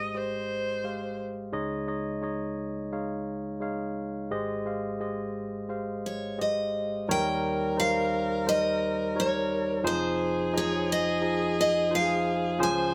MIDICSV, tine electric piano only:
0, 0, Header, 1, 2, 480
1, 0, Start_track
1, 0, Key_signature, -4, "major"
1, 0, Tempo, 692042
1, 1057, Time_signature, 4, 2, 24, 8
1, 8977, End_track
2, 0, Start_track
2, 0, Title_t, "Tine electric piano"
2, 0, Program_c, 0, 4
2, 0, Control_c, 0, 64, 127
2, 0, Note_on_c, 0, 32, 41
2, 0, Note_on_c, 0, 44, 43
2, 0, Note_on_c, 0, 56, 44
2, 0, Note_on_c, 0, 67, 42
2, 0, Note_on_c, 0, 72, 40
2, 0, Note_on_c, 0, 75, 52
2, 97, Note_off_c, 0, 56, 0
2, 97, Note_on_c, 0, 56, 42
2, 101, Note_off_c, 0, 67, 0
2, 101, Note_off_c, 0, 72, 0
2, 101, Note_on_c, 0, 67, 43
2, 101, Note_on_c, 0, 72, 42
2, 103, Note_off_c, 0, 75, 0
2, 103, Note_on_c, 0, 75, 49
2, 436, Note_off_c, 0, 56, 0
2, 437, Note_off_c, 0, 67, 0
2, 438, Note_off_c, 0, 72, 0
2, 438, Note_off_c, 0, 75, 0
2, 583, Note_on_c, 0, 67, 44
2, 584, Note_on_c, 0, 56, 48
2, 587, Note_on_c, 0, 72, 44
2, 587, Note_on_c, 0, 77, 52
2, 917, Note_off_c, 0, 67, 0
2, 918, Note_off_c, 0, 56, 0
2, 919, Note_off_c, 0, 72, 0
2, 919, Note_off_c, 0, 77, 0
2, 1030, Note_off_c, 0, 32, 0
2, 1032, Note_off_c, 0, 44, 0
2, 1057, Note_on_c, 0, 56, 79
2, 1059, Note_on_c, 0, 37, 54
2, 1060, Note_on_c, 0, 63, 72
2, 1061, Note_on_c, 0, 73, 72
2, 1062, Note_on_c, 0, 49, 54
2, 1063, Note_on_c, 0, 75, 85
2, 1067, Control_c, 0, 64, 0
2, 1204, Control_c, 0, 64, 127
2, 1226, Note_off_c, 0, 56, 0
2, 1227, Note_off_c, 0, 63, 0
2, 1227, Note_off_c, 0, 73, 0
2, 1229, Note_off_c, 0, 75, 0
2, 1298, Note_on_c, 0, 56, 50
2, 1302, Note_on_c, 0, 63, 48
2, 1303, Note_on_c, 0, 73, 47
2, 1306, Note_on_c, 0, 75, 61
2, 1466, Note_off_c, 0, 56, 0
2, 1468, Note_off_c, 0, 63, 0
2, 1469, Note_off_c, 0, 73, 0
2, 1470, Note_off_c, 0, 75, 0
2, 1540, Note_on_c, 0, 56, 54
2, 1544, Note_on_c, 0, 63, 52
2, 1544, Note_on_c, 0, 73, 53
2, 1550, Note_on_c, 0, 75, 60
2, 1876, Note_off_c, 0, 56, 0
2, 1878, Note_off_c, 0, 63, 0
2, 1878, Note_off_c, 0, 73, 0
2, 1881, Note_off_c, 0, 75, 0
2, 2028, Note_on_c, 0, 56, 57
2, 2028, Note_on_c, 0, 63, 50
2, 2030, Note_on_c, 0, 77, 57
2, 2033, Note_on_c, 0, 73, 52
2, 2360, Note_off_c, 0, 63, 0
2, 2361, Note_off_c, 0, 56, 0
2, 2362, Note_off_c, 0, 77, 0
2, 2363, Note_off_c, 0, 73, 0
2, 2499, Note_on_c, 0, 56, 59
2, 2505, Note_on_c, 0, 63, 48
2, 2508, Note_on_c, 0, 73, 54
2, 2510, Note_on_c, 0, 77, 62
2, 2837, Note_off_c, 0, 56, 0
2, 2840, Note_off_c, 0, 63, 0
2, 2842, Note_off_c, 0, 73, 0
2, 2843, Note_off_c, 0, 77, 0
2, 2953, Note_off_c, 0, 37, 0
2, 2955, Note_off_c, 0, 49, 0
2, 2988, Control_c, 0, 64, 0
2, 2989, Note_on_c, 0, 56, 77
2, 2990, Note_on_c, 0, 32, 52
2, 2990, Note_on_c, 0, 44, 48
2, 2992, Note_on_c, 0, 67, 70
2, 2993, Note_on_c, 0, 75, 85
2, 2995, Note_on_c, 0, 72, 67
2, 3126, Control_c, 0, 64, 127
2, 3154, Note_off_c, 0, 56, 0
2, 3155, Note_off_c, 0, 67, 0
2, 3156, Note_off_c, 0, 75, 0
2, 3157, Note_off_c, 0, 72, 0
2, 3228, Note_on_c, 0, 56, 52
2, 3228, Note_on_c, 0, 67, 46
2, 3233, Note_on_c, 0, 72, 49
2, 3237, Note_on_c, 0, 77, 57
2, 3394, Note_off_c, 0, 56, 0
2, 3394, Note_off_c, 0, 67, 0
2, 3397, Note_off_c, 0, 72, 0
2, 3399, Note_off_c, 0, 77, 0
2, 3470, Note_on_c, 0, 56, 57
2, 3472, Note_on_c, 0, 67, 45
2, 3473, Note_on_c, 0, 72, 44
2, 3475, Note_on_c, 0, 75, 58
2, 3806, Note_off_c, 0, 56, 0
2, 3807, Note_off_c, 0, 67, 0
2, 3808, Note_off_c, 0, 72, 0
2, 3809, Note_off_c, 0, 75, 0
2, 3945, Note_on_c, 0, 56, 55
2, 3949, Note_on_c, 0, 72, 51
2, 3950, Note_on_c, 0, 67, 46
2, 3953, Note_on_c, 0, 77, 57
2, 4286, Note_off_c, 0, 56, 0
2, 4288, Note_off_c, 0, 72, 0
2, 4289, Note_off_c, 0, 67, 0
2, 4290, Note_off_c, 0, 77, 0
2, 4428, Note_on_c, 0, 56, 51
2, 4428, Note_on_c, 0, 67, 52
2, 4430, Note_on_c, 0, 72, 50
2, 4432, Note_on_c, 0, 75, 58
2, 4770, Note_off_c, 0, 56, 0
2, 4770, Note_off_c, 0, 67, 0
2, 4771, Note_off_c, 0, 72, 0
2, 4772, Note_off_c, 0, 75, 0
2, 4892, Note_off_c, 0, 32, 0
2, 4892, Note_off_c, 0, 44, 0
2, 4915, Note_on_c, 0, 39, 58
2, 4915, Note_on_c, 0, 55, 95
2, 4915, Note_on_c, 0, 63, 82
2, 4917, Note_on_c, 0, 70, 81
2, 4918, Note_on_c, 0, 51, 60
2, 4919, Note_on_c, 0, 73, 92
2, 4922, Control_c, 0, 64, 0
2, 5062, Control_c, 0, 64, 127
2, 5253, Note_off_c, 0, 55, 0
2, 5253, Note_off_c, 0, 63, 0
2, 5254, Note_off_c, 0, 70, 0
2, 5255, Note_off_c, 0, 73, 0
2, 5386, Note_on_c, 0, 55, 60
2, 5387, Note_on_c, 0, 63, 54
2, 5390, Note_on_c, 0, 70, 58
2, 5392, Note_on_c, 0, 72, 69
2, 5728, Note_off_c, 0, 55, 0
2, 5728, Note_off_c, 0, 63, 0
2, 5730, Note_off_c, 0, 70, 0
2, 5731, Note_off_c, 0, 72, 0
2, 5868, Note_on_c, 0, 55, 66
2, 5874, Note_on_c, 0, 63, 52
2, 5874, Note_on_c, 0, 72, 68
2, 5877, Note_on_c, 0, 70, 55
2, 6207, Note_off_c, 0, 55, 0
2, 6211, Note_off_c, 0, 63, 0
2, 6211, Note_off_c, 0, 72, 0
2, 6212, Note_off_c, 0, 70, 0
2, 6347, Note_on_c, 0, 63, 62
2, 6348, Note_on_c, 0, 55, 64
2, 6351, Note_on_c, 0, 70, 59
2, 6355, Note_on_c, 0, 73, 71
2, 6687, Note_off_c, 0, 55, 0
2, 6687, Note_off_c, 0, 63, 0
2, 6689, Note_off_c, 0, 70, 0
2, 6691, Note_off_c, 0, 73, 0
2, 6805, Note_off_c, 0, 39, 0
2, 6806, Note_off_c, 0, 51, 0
2, 6823, Note_on_c, 0, 53, 97
2, 6826, Note_on_c, 0, 29, 62
2, 6827, Note_on_c, 0, 41, 62
2, 6827, Note_on_c, 0, 63, 77
2, 6828, Note_on_c, 0, 68, 83
2, 6828, Note_on_c, 0, 72, 102
2, 6840, Control_c, 0, 64, 0
2, 6962, Control_c, 0, 64, 127
2, 7164, Note_off_c, 0, 53, 0
2, 7166, Note_off_c, 0, 63, 0
2, 7167, Note_off_c, 0, 68, 0
2, 7167, Note_off_c, 0, 72, 0
2, 7304, Note_on_c, 0, 53, 64
2, 7304, Note_on_c, 0, 63, 60
2, 7307, Note_on_c, 0, 68, 57
2, 7311, Note_on_c, 0, 75, 71
2, 7642, Note_off_c, 0, 53, 0
2, 7642, Note_off_c, 0, 63, 0
2, 7643, Note_off_c, 0, 68, 0
2, 7646, Note_off_c, 0, 75, 0
2, 7777, Note_on_c, 0, 53, 65
2, 7782, Note_on_c, 0, 63, 55
2, 7785, Note_on_c, 0, 68, 57
2, 7785, Note_on_c, 0, 75, 71
2, 8117, Note_off_c, 0, 53, 0
2, 8120, Note_off_c, 0, 63, 0
2, 8121, Note_off_c, 0, 75, 0
2, 8122, Note_off_c, 0, 68, 0
2, 8256, Note_on_c, 0, 53, 66
2, 8259, Note_on_c, 0, 63, 63
2, 8261, Note_on_c, 0, 72, 70
2, 8263, Note_on_c, 0, 68, 57
2, 8596, Note_off_c, 0, 53, 0
2, 8597, Note_off_c, 0, 63, 0
2, 8598, Note_off_c, 0, 72, 0
2, 8599, Note_off_c, 0, 68, 0
2, 8710, Note_off_c, 0, 29, 0
2, 8711, Note_off_c, 0, 41, 0
2, 8732, Note_on_c, 0, 53, 94
2, 8736, Note_on_c, 0, 49, 65
2, 8736, Note_on_c, 0, 61, 87
2, 8738, Note_on_c, 0, 37, 64
2, 8738, Note_on_c, 0, 68, 84
2, 8740, Note_on_c, 0, 72, 108
2, 8750, Control_c, 0, 64, 0
2, 8862, Control_c, 0, 64, 127
2, 8977, Note_off_c, 0, 37, 0
2, 8977, Note_off_c, 0, 49, 0
2, 8977, Note_off_c, 0, 53, 0
2, 8977, Note_off_c, 0, 61, 0
2, 8977, Note_off_c, 0, 68, 0
2, 8977, Note_off_c, 0, 72, 0
2, 8977, End_track
0, 0, End_of_file